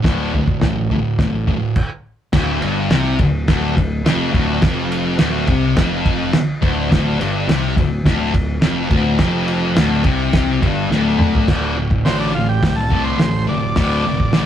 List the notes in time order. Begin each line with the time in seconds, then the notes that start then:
0.03 D1 D2 A2 D3, kick, snare, floor tom
0.33 D2 A2, floor tom
0.48 kick
0.60 A1 D2 A2, snare, floor tom
0.90 D2 A2, floor tom
1.19 A1 D2 A2, kick, snare, floor tom
1.48 D2 A2, kick, floor tom
1.76 kick, crash
2.33 D1 D2, kick, snare, crash
2.61 G1 G2, ride
2.90 C2 C3, snare, ride
3.19 D1 D2, kick, ride
3.48 D1 D2, kick, snare, ride
3.77 D1 D2, kick, ride
4.05 F1 F2, snare, ride
4.33 D1 D2, kick, ride
4.62 F2, kick, snare, ride
4.92 ride
5.19 D1 D2, snare, ride
5.47 C2 C3, kick, ride
5.77 F1 F2, kick, snare, ride
6.06 kick, ride
6.33 muted picked electric bass stroke, muted distorted electric guitar stroke, snare, ride
6.62 D1 D2, kick, ride
6.90 D1 D2, kick, snare, ride
7.19 G1 G2, ride
7.47 C2 C3, snare, ride
7.77 D1 D2, kick, ride
8.05 D1 D2, kick, snare, ride
8.34 D1 D2, kick, ride
8.60 F1 F2, snare, ride
8.90 D1 D2, kick, ride
9.19 F1 F2, kick, snare, ride
9.48 ride
9.75 D1 D2, snare, ride
10.04 C2 C3, kick, ride
10.33 kick, snare, ride
10.61 G1 G2, kick, ride
10.89 D1 D2, snare
11.19 mid tom
11.35 floor tom
11.48 D1 D2 A2 D3, kick, snare, crash
11.76 D2 A2
11.91 kick
12.03 A1 D2 A2 D3 C4, snare, open hi-hat
12.20 D4
12.33 D2 A2 F4
12.49 G4
12.63 D2 A2, kick, snare, open hi-hat
12.76 A4
12.90 D2 A2 D3, kick
13.04 C5
13.18 A1 D2 A2, snare, open hi-hat
13.47 F1 D2 A2 D5
13.76 D1 D2 A2 D3, kick, snare, open hi-hat
14.05 F1 D2 A2
14.20 kick
14.33 A1 D2 A2 D3, snare, open hi-hat